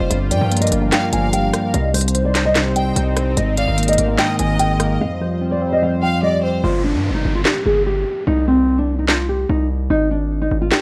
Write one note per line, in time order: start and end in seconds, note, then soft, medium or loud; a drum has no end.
0.00 0.10 F1 loud
0.00 3.33 G3 medium
0.00 1.71 F4 medium
0.10 0.32 G1 loud
0.10 0.91 G2 medium
0.10 1.72 D4 medium
0.10 1.72 A#4 loud
0.10 0.28 F5 loud
0.10 closed hi-hat medium
0.31 0.41 G2 loud
0.31 1.12 F3 medium
0.31 0.60 D5 medium
0.31 0.50 G5 medium
0.31 closed hi-hat medium
0.41 0.71 G2 loud
0.51 0.71 A#3 loud
0.51 closed hi-hat medium
0.57 closed hi-hat medium
0.61 0.79 D#5 medium
0.61 closed hi-hat medium
0.67 closed hi-hat medium
0.72 0.91 G1 loud
0.72 1.52 A#3 medium
0.72 closed hi-hat medium
0.82 0.91 F5 medium
0.92 1.74 G2 medium
0.92 1.12 F5 medium
0.92 1.10 G5 medium
0.92 snare loud
0.92 clap medium
0.92 closed hi-hat medium
1.13 1.52 G1 loud
1.13 1.74 F3 medium
1.13 1.70 F5 medium
1.13 1.30 G#5 medium
1.13 closed hi-hat medium
1.33 1.74 G3 medium
1.33 1.71 G5 medium
1.33 closed hi-hat medium
1.53 1.74 A#3 medium
1.53 cross-stick medium
1.53 closed hi-hat medium
1.74 2.92 C2 loud
1.74 2.54 C3 medium
1.74 6.60 C4 medium
1.74 4.97 D#4 medium
1.74 3.35 C5 medium
1.74 1.91 D#5 loud
1.74 closed hi-hat medium
1.94 2.75 G3 medium
1.94 2.23 C5 medium
1.94 closed hi-hat soft
1.94 open hi-hat medium
2.01 closed hi-hat medium
2.08 closed hi-hat medium
2.15 2.34 C5 loud
2.15 closed hi-hat medium
2.25 2.42 D5 medium
2.35 3.15 C5 medium
2.35 snare loud
2.35 clap medium
2.35 closed hi-hat medium
2.45 2.54 D#5 medium
2.55 3.37 C3 loud
2.55 snare loud
2.55 clap medium
2.55 closed hi-hat medium
2.76 3.37 G3 medium
2.76 2.93 G5 medium
2.76 2.95 G5 medium
2.76 closed hi-hat medium
2.96 3.35 C2 loud
2.96 3.37 C4 medium
2.96 3.14 D#5 medium
2.96 closed hi-hat medium
3.17 3.37 C5 medium
3.17 cross-stick medium
3.17 closed hi-hat medium
3.37 3.66 G#1 loud
3.37 4.17 G#2 loud
3.37 4.99 G#3 medium
3.37 4.99 A#4 medium
3.37 3.55 D#5 loud
3.37 closed hi-hat medium
3.57 4.38 D#3 medium
3.57 3.86 D5 medium
3.57 3.77 F5 medium
3.57 closed hi-hat medium
3.68 3.97 G#1 loud
3.78 3.97 A#3 loud
3.78 closed hi-hat medium
3.83 closed hi-hat medium
3.88 4.06 D#5 medium
3.88 closed hi-hat medium
3.93 closed hi-hat medium
3.98 4.18 G#1 loud
3.98 4.79 A#3 loud
3.98 closed hi-hat medium
4.08 4.17 F5 medium
4.19 5.00 G#2 medium
4.19 4.38 D#5 medium
4.19 4.36 G5 medium
4.19 snare loud
4.19 clap medium
4.19 closed hi-hat medium
4.39 4.98 G#1 loud
4.39 5.00 D#3 medium
4.39 4.97 D#5 medium
4.39 4.57 G#5 medium
4.39 closed hi-hat medium
4.59 5.00 G#3 loud
4.59 4.98 G5 medium
4.59 closed hi-hat medium
4.80 5.00 A#3 medium
4.80 cross-stick medium
4.80 closed hi-hat medium
5.00 5.81 F2 medium
5.00 6.62 G3 medium
5.00 6.62 F4 medium
5.00 6.62 C5 loud
5.00 5.18 F5 loud
5.21 6.01 F3 medium
5.21 5.50 C5 medium
5.41 5.61 C4 medium
5.51 5.69 D5 medium
5.62 6.42 C4 loud
5.72 5.81 D#5 medium
5.82 6.64 F2 medium
5.82 6.00 F5 medium
6.03 6.64 F3 medium
6.03 6.22 F5 medium
6.03 6.20 G5 medium
6.23 6.64 G3 loud
6.23 6.42 D5 medium
6.23 6.41 D#5 medium
6.43 6.64 C4 medium
6.43 6.63 C5 medium
6.64 6.96 G1 loud
6.64 6.81 F4 medium
6.64 downlifter medium
6.84 7.13 D4 medium
6.94 7.11 G2 loud
7.10 7.24 G1 loud
7.14 7.32 D#4 medium
7.25 7.45 G1 loud
7.35 7.44 F4 medium
7.45 7.63 G4 medium
7.45 snare loud
7.45 clap medium
7.66 8.05 G1 loud
7.66 7.84 G#4 medium
7.86 8.25 G4 medium
8.27 9.45 C2 loud
8.27 8.45 D#4 loud
8.48 8.76 C4 medium
8.78 8.96 D4 medium
8.99 9.07 D#4 medium
9.09 9.27 F4 medium
9.09 snare loud
9.09 clap medium
9.29 9.46 G4 medium
9.49 9.89 C2 loud
9.49 9.67 D#4 medium
9.90 10.49 G#1 loud
9.90 10.08 D#4 loud
10.11 10.39 D4 medium
10.42 10.59 D#4 medium
10.51 10.71 G#1 loud
10.61 10.70 F4 medium
10.72 10.81 G4 medium
10.72 snare loud
10.72 clap medium